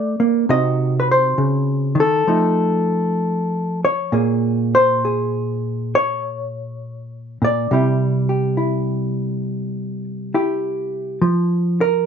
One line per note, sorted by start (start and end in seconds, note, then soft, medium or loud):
0.00 0.19 A3 soft
0.00 0.46 D4 soft
0.00 0.47 F4 soft
0.00 0.50 D5 medium
0.20 0.49 A#3 medium
0.49 1.37 C3 medium
0.49 2.25 C4 soft
0.49 2.25 D#4 soft
0.49 2.26 F#4 soft
0.49 0.99 D#5 medium
1.00 1.09 B4 medium
1.11 1.99 C5 medium
1.38 1.98 C#3 soft
1.95 2.27 D#3 soft
2.00 3.84 A4 medium
2.27 4.09 F3 medium
2.27 4.09 A3 soft
2.27 4.10 D#4 soft
3.85 4.74 C#5 medium
4.12 7.41 A#2 medium
4.12 7.68 A#3 soft
4.12 5.04 G#4 soft
4.75 5.95 C5 medium
5.05 7.69 G#4 soft
5.95 7.43 C#5 medium
7.42 7.71 A#2 medium
7.42 10.04 D5 medium
7.71 11.17 C3 medium
7.71 11.21 G3 soft
7.71 8.57 E4 soft
7.71 8.28 G4 soft
8.29 10.33 G4 soft
8.57 10.34 E4 soft
10.34 11.25 E4 soft
10.34 11.19 G4 soft
11.22 12.06 F3 medium
11.81 12.06 A#4 medium